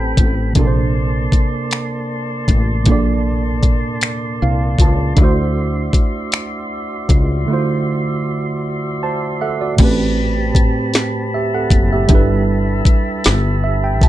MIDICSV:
0, 0, Header, 1, 6, 480
1, 0, Start_track
1, 0, Tempo, 769231
1, 346, Time_signature, 6, 3, 24, 8
1, 8790, End_track
2, 0, Start_track
2, 0, Title_t, "Tonewheel organ"
2, 0, Program_c, 0, 16
2, 0, Note_on_c, 0, 60, 67
2, 0, Note_on_c, 0, 69, 74
2, 0, Note_on_c, 0, 79, 67
2, 0, Note_on_c, 0, 83, 80
2, 332, Note_off_c, 0, 60, 0
2, 333, Note_off_c, 0, 69, 0
2, 333, Note_off_c, 0, 79, 0
2, 333, Note_off_c, 0, 83, 0
2, 350, Note_on_c, 0, 58, 58
2, 350, Note_on_c, 0, 74, 59
2, 350, Note_on_c, 0, 81, 60
2, 355, Note_on_c, 0, 84, 70
2, 3203, Note_off_c, 0, 58, 0
2, 3203, Note_off_c, 0, 81, 0
2, 3227, Note_on_c, 0, 76, 60
2, 3228, Note_on_c, 0, 66, 64
2, 6081, Note_off_c, 0, 76, 0
2, 6082, Note_off_c, 0, 66, 0
2, 6083, Note_off_c, 0, 74, 0
2, 6085, Note_off_c, 0, 84, 0
2, 6104, Note_on_c, 0, 81, 64
2, 6106, Note_on_c, 0, 67, 70
2, 6107, Note_on_c, 0, 60, 68
2, 6108, Note_on_c, 0, 83, 87
2, 7531, Note_off_c, 0, 81, 0
2, 7532, Note_off_c, 0, 60, 0
2, 7547, Note_on_c, 0, 81, 69
2, 7548, Note_on_c, 0, 76, 66
2, 8790, Note_off_c, 0, 67, 0
2, 8790, Note_off_c, 0, 76, 0
2, 8790, Note_off_c, 0, 81, 0
2, 8790, Note_off_c, 0, 83, 0
2, 8790, End_track
3, 0, Start_track
3, 0, Title_t, "Tine electric piano"
3, 0, Program_c, 1, 4
3, 0, Control_c, 1, 64, 127
3, 0, Note_on_c, 1, 45, 78
3, 0, Note_on_c, 1, 57, 72
3, 0, Note_on_c, 1, 60, 66
3, 0, Note_on_c, 1, 64, 55
3, 0, Note_on_c, 1, 67, 69
3, 0, Note_on_c, 1, 71, 82
3, 0, Note_on_c, 1, 72, 59
3, 312, Note_off_c, 1, 45, 0
3, 317, Note_off_c, 1, 57, 0
3, 330, Note_off_c, 1, 67, 0
3, 333, Note_on_c, 1, 48, 63
3, 335, Note_off_c, 1, 71, 0
3, 343, Note_off_c, 1, 60, 0
3, 343, Note_on_c, 1, 58, 62
3, 355, Control_c, 1, 64, 0
3, 356, Note_on_c, 1, 62, 61
3, 359, Note_off_c, 1, 64, 0
3, 359, Note_off_c, 1, 72, 0
3, 367, Note_on_c, 1, 69, 62
3, 380, Note_on_c, 1, 70, 55
3, 403, Note_off_c, 1, 70, 0
3, 419, Note_on_c, 1, 72, 71
3, 461, Control_c, 1, 64, 127
3, 1755, Note_off_c, 1, 48, 0
3, 1760, Note_off_c, 1, 58, 0
3, 1766, Note_off_c, 1, 62, 0
3, 1771, Note_off_c, 1, 69, 0
3, 1773, Note_on_c, 1, 46, 67
3, 1789, Note_on_c, 1, 58, 65
3, 1797, Note_off_c, 1, 72, 0
3, 1797, Note_on_c, 1, 62, 61
3, 1811, Note_on_c, 1, 69, 59
3, 1821, Note_on_c, 1, 74, 76
3, 2760, Note_on_c, 1, 77, 65
3, 2977, Note_off_c, 1, 77, 0
3, 3004, Note_on_c, 1, 81, 65
3, 3194, Note_off_c, 1, 46, 0
3, 3202, Note_off_c, 1, 58, 0
3, 3206, Note_off_c, 1, 62, 0
3, 3213, Note_off_c, 1, 69, 0
3, 3217, Note_on_c, 1, 62, 66
3, 3218, Note_off_c, 1, 74, 0
3, 3219, Note_off_c, 1, 81, 0
3, 3231, Note_on_c, 1, 57, 61
3, 3234, Control_c, 1, 64, 0
3, 3245, Note_on_c, 1, 64, 59
3, 3256, Note_on_c, 1, 66, 61
3, 3270, Note_on_c, 1, 72, 79
3, 3327, Control_c, 1, 64, 127
3, 4636, Note_off_c, 1, 62, 0
3, 4643, Note_off_c, 1, 57, 0
3, 4650, Note_off_c, 1, 64, 0
3, 4656, Note_off_c, 1, 66, 0
3, 4657, Note_on_c, 1, 50, 69
3, 4663, Note_off_c, 1, 72, 0
3, 4667, Note_on_c, 1, 57, 65
3, 4681, Note_on_c, 1, 64, 65
3, 4691, Note_on_c, 1, 65, 50
3, 4702, Note_on_c, 1, 72, 70
3, 4719, Note_off_c, 1, 65, 0
3, 4731, Note_on_c, 1, 66, 61
3, 5625, Note_off_c, 1, 72, 0
3, 5635, Note_on_c, 1, 81, 73
3, 5638, Note_on_c, 1, 72, 57
3, 5640, Note_off_c, 1, 66, 0
3, 5854, Note_off_c, 1, 81, 0
3, 5860, Note_off_c, 1, 72, 0
3, 5874, Note_on_c, 1, 76, 68
3, 5874, Note_on_c, 1, 78, 67
3, 5877, Note_on_c, 1, 69, 57
3, 5984, Note_off_c, 1, 78, 0
3, 5986, Note_off_c, 1, 69, 0
3, 5998, Note_on_c, 1, 74, 57
3, 6000, Note_on_c, 1, 66, 48
3, 6076, Note_off_c, 1, 50, 0
3, 6081, Note_off_c, 1, 57, 0
3, 6088, Note_off_c, 1, 64, 0
3, 6093, Note_off_c, 1, 76, 0
3, 6094, Note_on_c, 1, 45, 70
3, 6108, Note_on_c, 1, 57, 66
3, 6114, Control_c, 1, 64, 0
3, 6117, Note_on_c, 1, 60, 69
3, 6132, Note_on_c, 1, 67, 65
3, 6141, Note_on_c, 1, 71, 89
3, 6216, Control_c, 1, 64, 127
3, 6220, Note_off_c, 1, 74, 0
3, 6221, Note_off_c, 1, 66, 0
3, 7060, Note_off_c, 1, 67, 0
3, 7064, Note_off_c, 1, 71, 0
3, 7079, Note_on_c, 1, 76, 64
3, 7086, Note_on_c, 1, 67, 55
3, 7186, Note_off_c, 1, 76, 0
3, 7190, Note_off_c, 1, 67, 0
3, 7204, Note_on_c, 1, 69, 63
3, 7204, Note_on_c, 1, 78, 72
3, 7423, Note_off_c, 1, 69, 0
3, 7423, Note_off_c, 1, 78, 0
3, 7442, Note_on_c, 1, 76, 64
3, 7444, Note_on_c, 1, 67, 59
3, 7515, Note_off_c, 1, 45, 0
3, 7522, Note_off_c, 1, 57, 0
3, 7526, Note_off_c, 1, 60, 0
3, 7532, Note_on_c, 1, 55, 80
3, 7543, Note_on_c, 1, 62, 76
3, 7553, Control_c, 1, 64, 0
3, 7557, Note_on_c, 1, 64, 69
3, 7569, Note_on_c, 1, 69, 64
3, 7580, Note_on_c, 1, 71, 87
3, 7654, Control_c, 1, 64, 127
3, 7662, Note_off_c, 1, 76, 0
3, 7663, Note_off_c, 1, 67, 0
3, 8510, Note_on_c, 1, 76, 73
3, 8620, Note_off_c, 1, 76, 0
3, 8635, Note_on_c, 1, 79, 71
3, 8742, Note_off_c, 1, 79, 0
3, 8756, Note_on_c, 1, 81, 73
3, 8790, Note_off_c, 1, 55, 0
3, 8790, Note_off_c, 1, 62, 0
3, 8790, Note_off_c, 1, 64, 0
3, 8790, Note_off_c, 1, 69, 0
3, 8790, Note_off_c, 1, 71, 0
3, 8790, Note_off_c, 1, 81, 0
3, 8790, End_track
4, 0, Start_track
4, 0, Title_t, "Fretless electric bass"
4, 0, Program_c, 2, 35
4, 0, Note_on_c, 2, 33, 100
4, 87, Note_off_c, 2, 33, 0
4, 114, Note_on_c, 2, 33, 81
4, 326, Note_off_c, 2, 33, 0
4, 354, Note_on_c, 2, 34, 85
4, 805, Note_off_c, 2, 34, 0
4, 1554, Note_on_c, 2, 33, 79
4, 1766, Note_off_c, 2, 33, 0
4, 1794, Note_on_c, 2, 34, 90
4, 2245, Note_off_c, 2, 34, 0
4, 2759, Note_on_c, 2, 36, 76
4, 2969, Note_off_c, 2, 36, 0
4, 2992, Note_on_c, 2, 37, 80
4, 3205, Note_off_c, 2, 37, 0
4, 3231, Note_on_c, 2, 38, 93
4, 3683, Note_off_c, 2, 38, 0
4, 4431, Note_on_c, 2, 37, 82
4, 4645, Note_off_c, 2, 37, 0
4, 6111, Note_on_c, 2, 33, 111
4, 6563, Note_off_c, 2, 33, 0
4, 7311, Note_on_c, 2, 30, 89
4, 7524, Note_off_c, 2, 30, 0
4, 7548, Note_on_c, 2, 31, 106
4, 8002, Note_off_c, 2, 31, 0
4, 8276, Note_on_c, 2, 31, 102
4, 8752, Note_off_c, 2, 31, 0
4, 8752, Note_on_c, 2, 37, 95
4, 8790, Note_off_c, 2, 37, 0
4, 8790, End_track
5, 0, Start_track
5, 0, Title_t, "Muted fretless electric bass strokes"
5, 829, Note_on_c, 9, 29, 41
5, 892, Note_off_c, 9, 29, 0
5, 2269, Note_on_c, 9, 29, 44
5, 2332, Note_off_c, 9, 29, 0
5, 3710, Note_on_c, 9, 29, 44
5, 3772, Note_off_c, 9, 29, 0
5, 6591, Note_on_c, 9, 29, 45
5, 6653, Note_off_c, 9, 29, 0
5, 8026, Note_on_c, 9, 29, 47
5, 8089, Note_off_c, 9, 29, 0
5, 8790, End_track
6, 0, Start_track
6, 0, Title_t, "Drums"
6, 108, Note_on_c, 9, 36, 95
6, 111, Note_on_c, 9, 42, 81
6, 171, Note_off_c, 9, 36, 0
6, 174, Note_off_c, 9, 42, 0
6, 344, Note_on_c, 9, 42, 78
6, 347, Note_on_c, 9, 36, 114
6, 406, Note_off_c, 9, 42, 0
6, 409, Note_off_c, 9, 36, 0
6, 825, Note_on_c, 9, 36, 75
6, 831, Note_on_c, 9, 42, 59
6, 887, Note_off_c, 9, 36, 0
6, 894, Note_off_c, 9, 42, 0
6, 1068, Note_on_c, 9, 42, 68
6, 1077, Note_on_c, 9, 26, 92
6, 1131, Note_off_c, 9, 42, 0
6, 1140, Note_off_c, 9, 26, 0
6, 1547, Note_on_c, 9, 36, 83
6, 1551, Note_on_c, 9, 42, 69
6, 1610, Note_off_c, 9, 36, 0
6, 1613, Note_off_c, 9, 42, 0
6, 1782, Note_on_c, 9, 42, 71
6, 1786, Note_on_c, 9, 36, 112
6, 1844, Note_off_c, 9, 42, 0
6, 1848, Note_off_c, 9, 36, 0
6, 2263, Note_on_c, 9, 36, 77
6, 2266, Note_on_c, 9, 42, 70
6, 2325, Note_off_c, 9, 36, 0
6, 2328, Note_off_c, 9, 42, 0
6, 2505, Note_on_c, 9, 42, 62
6, 2514, Note_on_c, 9, 26, 105
6, 2567, Note_off_c, 9, 42, 0
6, 2576, Note_off_c, 9, 26, 0
6, 2986, Note_on_c, 9, 36, 83
6, 2993, Note_on_c, 9, 42, 82
6, 3048, Note_off_c, 9, 36, 0
6, 3055, Note_off_c, 9, 42, 0
6, 3224, Note_on_c, 9, 42, 75
6, 3225, Note_on_c, 9, 36, 109
6, 3286, Note_off_c, 9, 42, 0
6, 3287, Note_off_c, 9, 36, 0
6, 3702, Note_on_c, 9, 36, 77
6, 3708, Note_on_c, 9, 42, 67
6, 3764, Note_off_c, 9, 36, 0
6, 3771, Note_off_c, 9, 42, 0
6, 3944, Note_on_c, 9, 42, 62
6, 3953, Note_on_c, 9, 26, 99
6, 4007, Note_off_c, 9, 42, 0
6, 4016, Note_off_c, 9, 26, 0
6, 4424, Note_on_c, 9, 36, 89
6, 4428, Note_on_c, 9, 42, 76
6, 4487, Note_off_c, 9, 36, 0
6, 4491, Note_off_c, 9, 42, 0
6, 6105, Note_on_c, 9, 42, 92
6, 6105, Note_on_c, 9, 49, 107
6, 6107, Note_on_c, 9, 36, 126
6, 6167, Note_off_c, 9, 42, 0
6, 6168, Note_off_c, 9, 49, 0
6, 6169, Note_off_c, 9, 36, 0
6, 6582, Note_on_c, 9, 36, 82
6, 6589, Note_on_c, 9, 42, 79
6, 6645, Note_off_c, 9, 36, 0
6, 6652, Note_off_c, 9, 42, 0
6, 6824, Note_on_c, 9, 42, 68
6, 6833, Note_on_c, 9, 38, 111
6, 6886, Note_off_c, 9, 42, 0
6, 6896, Note_off_c, 9, 38, 0
6, 7304, Note_on_c, 9, 36, 95
6, 7309, Note_on_c, 9, 42, 80
6, 7366, Note_off_c, 9, 36, 0
6, 7372, Note_off_c, 9, 42, 0
6, 7542, Note_on_c, 9, 42, 93
6, 7544, Note_on_c, 9, 36, 125
6, 7605, Note_off_c, 9, 42, 0
6, 7607, Note_off_c, 9, 36, 0
6, 8020, Note_on_c, 9, 36, 91
6, 8028, Note_on_c, 9, 42, 82
6, 8083, Note_off_c, 9, 36, 0
6, 8090, Note_off_c, 9, 42, 0
6, 8264, Note_on_c, 9, 42, 75
6, 8273, Note_on_c, 9, 38, 106
6, 8326, Note_off_c, 9, 42, 0
6, 8335, Note_off_c, 9, 38, 0
6, 8745, Note_on_c, 9, 36, 100
6, 8754, Note_on_c, 9, 42, 93
6, 8790, Note_off_c, 9, 36, 0
6, 8790, Note_off_c, 9, 42, 0
6, 8790, End_track
0, 0, End_of_file